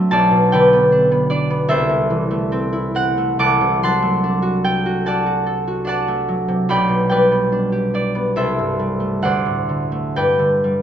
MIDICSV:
0, 0, Header, 1, 2, 480
1, 0, Start_track
1, 0, Key_signature, 1, "major"
1, 0, Tempo, 804290
1, 54, Time_signature, 4, 2, 24, 8
1, 1491, Tempo, 899550
1, 1971, Tempo, 845070
1, 2451, Tempo, 810811
1, 3891, Tempo, 834492
1, 4851, Tempo, 878477
1, 5331, Tempo, 931677
1, 6154, End_track
2, 0, Start_track
2, 0, Title_t, "Harp"
2, 0, Program_c, 0, 46
2, 0, Note_on_c, 0, 45, 66
2, 0, Note_on_c, 0, 54, 56
2, 0, Note_on_c, 0, 57, 53
2, 0, Note_on_c, 0, 60, 61
2, 0, Note_on_c, 0, 62, 62
2, 0, Note_on_c, 0, 66, 65
2, 0, Note_on_c, 0, 69, 68
2, 0, Note_on_c, 0, 72, 70
2, 0, Note_on_c, 0, 74, 88
2, 65, Note_on_c, 0, 81, 109
2, 68, Note_off_c, 0, 74, 0
2, 68, Note_on_c, 0, 35, 71
2, 75, Note_on_c, 0, 74, 75
2, 78, Note_off_c, 0, 72, 0
2, 80, Note_off_c, 0, 57, 0
2, 82, Note_off_c, 0, 45, 0
2, 82, Note_off_c, 0, 66, 0
2, 83, Note_off_c, 0, 60, 0
2, 83, Note_off_c, 0, 69, 0
2, 85, Note_off_c, 0, 54, 0
2, 185, Note_on_c, 0, 47, 56
2, 311, Note_off_c, 0, 74, 0
2, 311, Note_on_c, 0, 79, 78
2, 315, Note_on_c, 0, 50, 58
2, 318, Note_on_c, 0, 74, 64
2, 322, Note_on_c, 0, 71, 64
2, 435, Note_on_c, 0, 59, 54
2, 464, Note_off_c, 0, 81, 0
2, 542, Note_off_c, 0, 62, 0
2, 549, Note_on_c, 0, 62, 55
2, 658, Note_off_c, 0, 59, 0
2, 666, Note_on_c, 0, 59, 58
2, 767, Note_off_c, 0, 74, 0
2, 773, Note_off_c, 0, 62, 0
2, 775, Note_on_c, 0, 74, 78
2, 781, Note_on_c, 0, 62, 56
2, 890, Note_off_c, 0, 59, 0
2, 897, Note_on_c, 0, 59, 53
2, 1005, Note_on_c, 0, 36, 67
2, 1008, Note_on_c, 0, 76, 94
2, 1013, Note_on_c, 0, 69, 70
2, 1019, Note_on_c, 0, 72, 77
2, 1023, Note_off_c, 0, 47, 0
2, 1025, Note_off_c, 0, 74, 0
2, 1026, Note_off_c, 0, 35, 0
2, 1027, Note_off_c, 0, 79, 0
2, 1028, Note_off_c, 0, 59, 0
2, 1029, Note_off_c, 0, 50, 0
2, 1029, Note_off_c, 0, 62, 0
2, 1032, Note_off_c, 0, 71, 0
2, 1131, Note_on_c, 0, 48, 47
2, 1254, Note_on_c, 0, 52, 51
2, 1376, Note_on_c, 0, 57, 54
2, 1502, Note_on_c, 0, 60, 54
2, 1613, Note_on_c, 0, 64, 51
2, 1726, Note_off_c, 0, 60, 0
2, 1731, Note_on_c, 0, 60, 57
2, 1736, Note_on_c, 0, 78, 89
2, 1846, Note_off_c, 0, 57, 0
2, 1852, Note_on_c, 0, 57, 51
2, 1960, Note_off_c, 0, 36, 0
2, 1967, Note_on_c, 0, 36, 62
2, 1969, Note_off_c, 0, 78, 0
2, 1969, Note_on_c, 0, 86, 106
2, 1971, Note_on_c, 0, 81, 75
2, 1976, Note_on_c, 0, 78, 77
2, 1994, Note_off_c, 0, 64, 0
2, 1995, Note_off_c, 0, 76, 0
2, 1996, Note_off_c, 0, 48, 0
2, 1997, Note_off_c, 0, 52, 0
2, 2090, Note_on_c, 0, 48, 52
2, 2214, Note_off_c, 0, 78, 0
2, 2215, Note_on_c, 0, 54, 46
2, 2219, Note_off_c, 0, 81, 0
2, 2219, Note_on_c, 0, 84, 96
2, 2221, Note_on_c, 0, 78, 68
2, 2226, Note_on_c, 0, 81, 71
2, 2319, Note_off_c, 0, 57, 0
2, 2325, Note_on_c, 0, 57, 50
2, 2447, Note_on_c, 0, 62, 53
2, 2558, Note_on_c, 0, 66, 59
2, 2682, Note_off_c, 0, 69, 0
2, 2688, Note_on_c, 0, 69, 54
2, 2689, Note_on_c, 0, 79, 86
2, 2808, Note_off_c, 0, 66, 0
2, 2815, Note_on_c, 0, 66, 53
2, 2926, Note_off_c, 0, 69, 0
2, 2930, Note_off_c, 0, 81, 0
2, 2933, Note_off_c, 0, 78, 0
2, 2933, Note_on_c, 0, 69, 53
2, 2937, Note_on_c, 0, 81, 77
2, 2941, Note_on_c, 0, 78, 61
2, 2944, Note_on_c, 0, 74, 57
2, 3047, Note_off_c, 0, 66, 0
2, 3054, Note_on_c, 0, 66, 46
2, 3095, Note_off_c, 0, 79, 0
2, 3167, Note_off_c, 0, 69, 0
2, 3174, Note_on_c, 0, 69, 54
2, 3258, Note_off_c, 0, 72, 0
2, 3292, Note_off_c, 0, 66, 0
2, 3299, Note_on_c, 0, 66, 55
2, 3398, Note_off_c, 0, 62, 0
2, 3400, Note_on_c, 0, 62, 53
2, 3406, Note_off_c, 0, 81, 0
2, 3407, Note_off_c, 0, 78, 0
2, 3408, Note_off_c, 0, 74, 0
2, 3414, Note_on_c, 0, 78, 69
2, 3415, Note_on_c, 0, 74, 64
2, 3424, Note_on_c, 0, 81, 83
2, 3532, Note_off_c, 0, 57, 0
2, 3539, Note_on_c, 0, 57, 53
2, 3652, Note_off_c, 0, 54, 0
2, 3659, Note_on_c, 0, 54, 43
2, 3770, Note_off_c, 0, 48, 0
2, 3777, Note_on_c, 0, 48, 48
2, 3898, Note_on_c, 0, 35, 62
2, 3901, Note_off_c, 0, 74, 0
2, 3902, Note_on_c, 0, 83, 87
2, 3906, Note_on_c, 0, 74, 71
2, 3907, Note_off_c, 0, 36, 0
2, 3908, Note_on_c, 0, 79, 69
2, 3911, Note_off_c, 0, 84, 0
2, 3912, Note_off_c, 0, 60, 0
2, 3912, Note_off_c, 0, 69, 0
2, 3912, Note_off_c, 0, 78, 0
2, 3912, Note_off_c, 0, 81, 0
2, 3913, Note_off_c, 0, 48, 0
2, 3914, Note_off_c, 0, 54, 0
2, 3915, Note_off_c, 0, 57, 0
2, 3915, Note_off_c, 0, 66, 0
2, 4014, Note_on_c, 0, 47, 43
2, 4125, Note_off_c, 0, 79, 0
2, 4132, Note_on_c, 0, 79, 80
2, 4134, Note_off_c, 0, 74, 0
2, 4138, Note_on_c, 0, 55, 41
2, 4142, Note_on_c, 0, 74, 64
2, 4144, Note_on_c, 0, 71, 66
2, 4247, Note_off_c, 0, 86, 0
2, 4260, Note_on_c, 0, 59, 47
2, 4371, Note_off_c, 0, 62, 0
2, 4377, Note_on_c, 0, 62, 45
2, 4493, Note_on_c, 0, 67, 46
2, 4613, Note_off_c, 0, 62, 0
2, 4613, Note_off_c, 0, 74, 0
2, 4617, Note_on_c, 0, 62, 42
2, 4622, Note_on_c, 0, 74, 74
2, 4731, Note_off_c, 0, 59, 0
2, 4738, Note_on_c, 0, 59, 49
2, 4859, Note_on_c, 0, 36, 54
2, 4862, Note_on_c, 0, 76, 73
2, 4865, Note_on_c, 0, 72, 59
2, 4870, Note_on_c, 0, 69, 60
2, 4873, Note_off_c, 0, 47, 0
2, 4874, Note_off_c, 0, 35, 0
2, 4874, Note_off_c, 0, 59, 0
2, 4875, Note_off_c, 0, 62, 0
2, 4875, Note_off_c, 0, 74, 0
2, 4875, Note_off_c, 0, 83, 0
2, 4877, Note_off_c, 0, 71, 0
2, 4984, Note_on_c, 0, 43, 41
2, 5090, Note_off_c, 0, 55, 0
2, 5097, Note_on_c, 0, 55, 39
2, 5209, Note_on_c, 0, 57, 43
2, 5331, Note_on_c, 0, 38, 50
2, 5333, Note_on_c, 0, 78, 75
2, 5338, Note_off_c, 0, 72, 0
2, 5343, Note_on_c, 0, 72, 56
2, 5343, Note_on_c, 0, 74, 60
2, 5352, Note_off_c, 0, 67, 0
2, 5352, Note_off_c, 0, 79, 0
2, 5353, Note_off_c, 0, 36, 0
2, 5354, Note_off_c, 0, 55, 0
2, 5355, Note_off_c, 0, 76, 0
2, 5357, Note_off_c, 0, 43, 0
2, 5451, Note_on_c, 0, 45, 40
2, 5572, Note_on_c, 0, 50, 40
2, 5682, Note_off_c, 0, 57, 0
2, 5689, Note_on_c, 0, 57, 44
2, 5813, Note_off_c, 0, 74, 0
2, 5814, Note_on_c, 0, 43, 52
2, 5816, Note_on_c, 0, 79, 72
2, 5817, Note_on_c, 0, 71, 56
2, 5821, Note_on_c, 0, 74, 54
2, 5823, Note_off_c, 0, 78, 0
2, 5824, Note_off_c, 0, 38, 0
2, 5825, Note_off_c, 0, 45, 0
2, 5826, Note_off_c, 0, 57, 0
2, 5827, Note_off_c, 0, 50, 0
2, 5829, Note_off_c, 0, 72, 0
2, 5832, Note_off_c, 0, 69, 0
2, 5932, Note_on_c, 0, 50, 40
2, 6061, Note_on_c, 0, 55, 43
2, 6154, Note_off_c, 0, 43, 0
2, 6154, Note_off_c, 0, 50, 0
2, 6154, Note_off_c, 0, 55, 0
2, 6154, Note_off_c, 0, 71, 0
2, 6154, Note_off_c, 0, 74, 0
2, 6154, Note_off_c, 0, 79, 0
2, 6154, End_track
0, 0, End_of_file